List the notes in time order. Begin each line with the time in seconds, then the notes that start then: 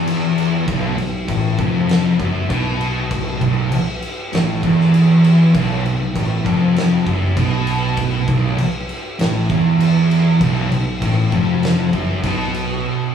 Already playing: E1 E2
0.07 crash
0.38 crash
0.67 B1, kick, crash
0.97 B1, crash
1.27 A1 A2, kick, crash
1.58 F1 F2, kick, crash
1.89 snare, crash
2.19 F#1 F#2, kick, crash
2.49 B1 B2, kick, crash
2.81 crash
3.11 kick, crash
3.41 B1, kick, crash
3.71 B1, muted distorted electric guitar stroke, crash
4.02 crash
4.33 A1 A2, snare, crash
4.63 E1 E2, kick, crash
4.81 snare
4.94 crash
5.24 crash
5.54 B1, kick, crash
5.84 B1, crash
6.14 A1 A2, kick, crash
6.44 F1 F2, kick, crash
6.76 snare, crash
7.06 F#1 F#2, kick, crash
7.37 B1 B2, kick, crash
7.67 crash
7.97 kick, crash
8.28 B1, kick, crash
8.58 B1, muted distorted electric guitar stroke, crash
8.89 crash
9.19 A1 A2, snare, crash
9.49 E1 E2, kick, crash
9.80 crash
10.11 crash
10.41 B1, kick, crash
10.71 B1, crash
10.99 A1 A2, kick, crash
11.32 F1 F2, kick, crash
11.63 snare, crash
11.92 F#1 F#2, kick, crash
12.23 B1 B2, kick, crash
12.54 crash